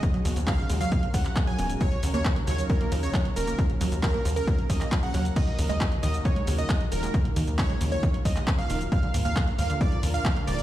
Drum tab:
CC |----------------|----------------|----------------|x---------------|
HH |xxoxxxoxxxoxxxox|xxoxxxoxxxoxxxox|xxoxxxoxxxoxxxox|xxoxxxoxxxoxxxox|
SH |x-xxx-xxx-xxx-xx|x-xxx-xxx-xxx-xx|x-xxx-xxx-xxx-xx|x-xxx-xxx-xxx-xx|
CP |----x------xx---|----x-------x---|----x------xx---|----x-------x---|
BD |o---o---o-o-o---|o---o---o---o---|o---o---o-o-o---|o---o---o---o---|

CC |----------------|----------------|
HH |xxoxxxoxxxoxxxox|xxoxxxoxxxoxxxox|
SH |x-xxx-xxx-xxx-xx|x-xxx-xxx-xxx-xx|
CP |----x------xx---|----x-------x---|
BD |o---o---o-o-o---|o---o---o---o---|